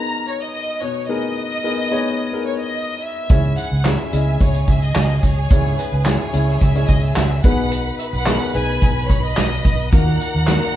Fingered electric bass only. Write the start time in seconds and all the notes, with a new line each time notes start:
3.30 C#2
3.72 C#2
4.13 C#2
4.41 C#2
4.68 C#2
4.96 C#2
5.23 C#2
5.51 C#2
5.92 C#2
6.34 C#2
6.62 C#2
6.89 C#2
7.16 C#2
7.44 B1
8.13 B1
8.55 B1
8.82 B1
9.10 B1
9.37 B1
9.65 B1
9.93 D#2
10.35 D#2